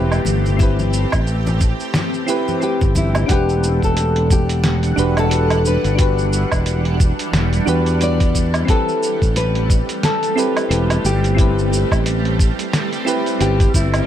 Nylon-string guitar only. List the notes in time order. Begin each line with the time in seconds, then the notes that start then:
2.63 G4
2.97 E4
3.31 G4
3.84 A4
4.32 G4
5.19 A4
5.67 B4
8.03 D5
8.70 A4
9.37 B4
10.04 A4
11.06 G4
13.41 G4
13.75 E4